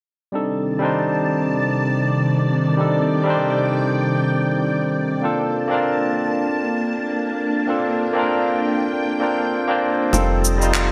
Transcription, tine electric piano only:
0.32 0.76 G3 medium
0.32 0.77 C4 medium
0.32 0.77 D4 medium
0.32 0.78 D#4 medium
0.32 0.78 A4 medium
0.79 2.74 G3 medium
0.79 2.75 C4 medium
0.79 2.76 D4 medium
0.83 2.76 D#4 medium
0.83 2.77 C5 medium
2.77 3.22 G3 medium
2.77 3.22 C4 medium
2.77 3.22 D4 medium
2.77 3.23 D#4 medium
2.77 3.23 A4 medium
3.23 5.19 G3 medium
3.23 5.20 C4 medium
3.23 5.21 D4 medium
3.28 5.21 D#4 medium
3.28 5.22 C5 medium
5.22 5.66 A#3 medium
5.22 5.67 C4 medium
5.22 5.67 D4 medium
5.22 5.67 F4 medium
5.22 5.68 A4 medium
5.68 7.63 A#3 medium
5.68 7.64 C4 medium
5.68 7.65 D4 medium
5.72 7.66 F4 medium
5.72 7.66 A#4 medium
7.67 8.11 A#3 medium
7.67 8.12 C4 medium
7.67 8.12 D4 medium
7.67 8.12 F4 medium
7.67 8.13 A4 medium
8.13 9.17 A#3 medium
8.13 9.18 C4 medium
8.13 9.19 D4 medium
8.18 9.20 F4 medium
8.18 9.20 A#4 medium
9.20 9.64 A#3 medium
9.20 9.65 C4 medium
9.20 9.65 D4 medium
9.20 9.65 F4 medium
9.20 9.66 A#4 medium
9.68 10.09 A#3 medium
9.68 10.10 C4 medium
9.68 10.10 D4 medium
9.68 10.11 F4 medium
9.68 10.11 C5 medium
10.11 10.56 G3 medium
10.11 10.56 C4 medium
10.11 10.57 D#4 medium
10.11 10.57 F4 medium
10.11 10.58 A4 medium
10.58 10.92 G3 medium
10.58 10.92 C4 medium
10.58 10.92 D#4 medium
10.63 10.92 F4 medium
10.63 10.92 C5 medium

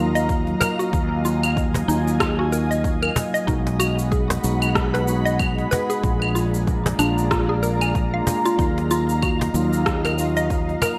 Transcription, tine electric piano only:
0.00 0.91 F#3 medium
0.00 0.92 A#3 medium
0.00 0.94 D#4 medium
0.00 1.91 F4 medium
0.91 1.84 F#3 medium
0.91 1.85 A#3 medium
0.91 1.86 D#4 medium
0.95 1.86 F5 medium
1.87 3.44 F#3 medium
1.87 3.45 A#3 medium
1.87 3.46 D#4 medium
1.91 3.46 F4 medium
3.45 4.39 G#3 medium
3.45 4.40 B3 medium
3.45 4.41 D#4 medium
3.45 4.41 F#4 loud
4.43 5.04 G#3 medium
4.43 5.04 B3 medium
4.43 5.05 D#4 medium
4.43 5.05 F#4 medium
5.05 5.99 G#3 medium
5.05 5.99 B3 medium
5.05 6.00 D#4 medium
5.09 6.01 F#4 medium
6.02 6.95 G#3 medium
6.02 6.96 A#3 medium
6.02 6.96 D4 medium
6.02 6.97 F4 medium
6.97 8.09 G#3 medium
6.97 8.09 A#3 medium
6.97 8.10 D4 medium
7.01 8.11 F4 medium
8.13 8.55 G#3 medium
8.13 8.56 A#3 medium
8.13 8.56 D4 medium
8.13 8.56 F4 medium
8.57 9.51 F#3 medium
8.57 9.51 A#3 medium
8.57 9.52 D#4 medium
8.57 9.53 F4 loud
9.54 10.15 F#3 medium
9.54 10.15 A#3 medium
9.54 10.15 D#4 medium
9.54 10.16 F4 loud
10.16 10.99 F#3 medium
10.16 10.99 A#3 medium
10.16 10.99 D#4 medium
10.16 10.99 F4 medium

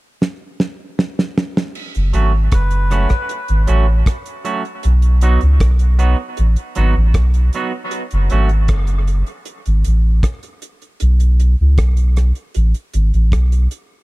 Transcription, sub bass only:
1.96 2.13 F#1 medium
2.14 2.49 G#1 medium
2.53 3.07 F#1 loud
3.49 3.66 G#1 medium
3.69 4.03 A1 medium
4.85 5.38 B1 loud
5.43 5.59 C#2 medium
5.61 6.15 B1 loud
6.39 6.56 A1 medium
6.77 6.95 G#1 medium
6.96 7.13 A1 loud
7.15 7.50 B1 medium
8.13 8.29 F#1 medium
8.32 8.71 G#1 medium
8.69 9.23 F#1 loud
9.67 9.84 G#1 medium
9.86 10.21 A1 medium
11.02 11.55 B1 loud
11.61 11.77 C#2 medium
11.78 12.32 B1 loud
12.56 12.73 A1 medium
12.94 13.12 G#1 medium
13.14 13.31 A1 medium
13.33 13.68 B1 loud

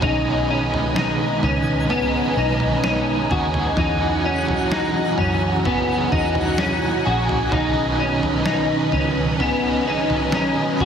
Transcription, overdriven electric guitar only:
0.01 1.88 B2 medium
0.01 1.89 D#3 medium
0.01 1.90 G#3 medium
0.01 1.91 C#4 medium
0.06 1.91 D#4 medium
0.06 1.92 G#4 medium
1.90 3.31 B2 medium
1.90 3.31 D#3 medium
1.90 3.33 G#3 medium
1.90 3.32 C#4 medium
1.90 3.30 D#4 medium
1.90 3.29 G#4 medium
3.30 3.78 G#3 soft
3.30 3.79 C#4 soft
3.30 3.78 D#4 soft
3.30 3.77 G#4 medium
3.76 5.63 E3 medium
3.76 5.65 F#3 medium
3.76 5.66 C#4 medium
3.81 5.66 F#4 loud
3.81 5.67 G#4 medium
5.64 7.06 E3 medium
5.64 7.08 F#3 medium
5.64 7.08 C#4 medium
5.64 7.06 F#4 medium
5.64 7.05 G#4 medium
7.05 7.53 C#4 soft
7.05 7.53 F#4 soft
7.05 7.53 G#4 medium
7.51 9.40 B2 medium
7.51 9.38 D#3 loud
7.51 9.40 F#3 medium
7.51 9.40 C#4 medium
7.56 9.42 D#4 medium
7.56 9.43 G#4 medium
9.39 10.85 D#3 medium
9.39 10.85 F#3 medium
9.39 10.85 C#4 medium
9.39 10.85 D#4 medium
9.44 10.85 G#4 medium

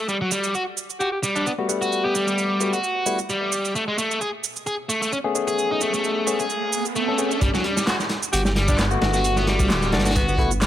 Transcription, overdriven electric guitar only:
0.09 0.17 G3 medium
0.21 0.30 F#3 medium
0.32 0.53 G3 loud
0.55 0.62 F#4 medium
1.01 1.08 F#4 medium
1.24 1.34 G3 medium
1.36 1.45 G3 medium
1.46 1.51 B3 medium
1.81 2.03 F#4 medium
2.05 2.14 B3 medium
2.15 2.26 G3 medium
2.27 2.72 G3 medium
2.73 3.18 F#4 medium
3.30 3.74 G3 medium
3.75 3.83 A3 medium
3.88 3.97 G#3 medium
3.98 4.20 A3 loud
4.21 4.29 G#4 medium
4.67 4.75 G#4 medium
4.89 5.00 A3 medium
5.02 5.11 A3 medium
5.12 5.17 C#4 medium
5.48 5.69 G#4 medium
5.71 5.80 D#4 medium
5.82 5.92 A3 medium
5.94 6.38 A3 medium
6.40 6.84 G#4 medium
6.96 7.40 A3 medium
7.42 7.49 G3 medium
7.54 7.63 F#3 loud
7.64 7.86 G3 loud
7.87 7.95 F#4 medium
8.33 8.41 F#4 medium
8.56 8.67 G3 loud
8.69 8.78 G3 medium
8.79 8.84 B3 medium
9.14 9.36 F#4 medium
9.37 9.46 B3 medium
9.47 9.58 G3 medium
9.60 10.04 G3 medium
10.05 10.50 F#4 medium
10.61 10.67 G3 medium

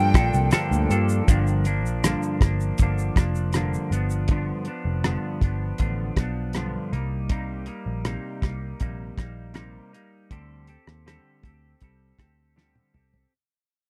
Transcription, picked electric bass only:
0.00 0.11 G2 loud
0.14 0.29 A#1 medium
0.34 0.49 C2 loud
0.53 muted picked electric bass stroke soft
0.71 0.86 D2 medium
0.90 1.20 G2 loud
1.28 1.84 G1 medium
1.84 2.14 A#1 medium
2.41 2.71 G1 medium
2.80 3.09 G1 medium
3.16 3.76 F1 medium
3.91 4.51 G1 medium
4.85 5.15 F1 medium
5.42 5.72 G1 medium
5.80 6.09 A1 medium
6.16 6.77 B1 medium
6.93 7.68 C2 medium
7.86 8.16 A#1 medium
8.42 8.72 C2 medium
8.81 9.11 A#1 medium
9.18 9.78 A#1 medium
10.31 10.76 D2 medium
10.87 11.17 D#2 medium
11.43 11.73 D2 medium
11.82 12.12 C2 medium
12.18 12.79 D2 medium
12.94 13.24 C2 medium

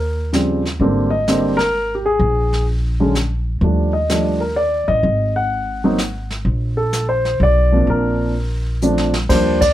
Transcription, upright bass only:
0.00 0.76 D#2 medium
0.80 2.17 G#1 medium
2.19 3.58 A#1 medium
3.61 4.84 D#2 medium
4.88 5.03 A1 medium
5.03 6.41 G#1 medium
6.45 7.36 A#1 medium
7.40 7.84 B1 medium
7.87 9.25 A#1 medium
9.29 9.73 D#2 medium

